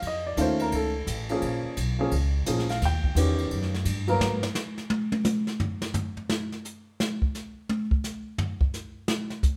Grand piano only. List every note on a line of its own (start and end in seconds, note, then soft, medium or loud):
0.07 0.26 D#5 medium
0.27 0.38 D5 medium
0.37 0.90 D#3 medium
0.37 0.90 A3 medium
0.37 0.90 C#4 medium
0.37 0.91 F4 medium
0.41 0.61 C5 medium
0.62 0.73 A#4 medium
0.75 1.40 A4 medium
1.30 1.75 F3 medium
1.30 1.75 A#3 medium
1.30 1.75 C#4 medium
1.30 1.76 G#4 medium
1.99 2.10 F3 medium
1.99 2.11 A#3 medium
1.99 2.11 C#4 medium
1.99 2.11 G#4 medium
2.46 2.66 F3 medium
2.46 2.67 A#3 medium
2.46 2.67 C#4 medium
2.46 2.67 G#4 medium
2.70 2.82 F5 medium
2.85 3.37 G5 loud
3.16 3.69 D#3 medium
3.16 3.69 B3 medium
3.16 3.69 C#4 medium
3.16 3.70 G4 medium
4.08 4.43 F#3 medium
4.08 4.43 A#3 medium
4.08 4.44 B3 medium
4.08 4.44 A#4 loud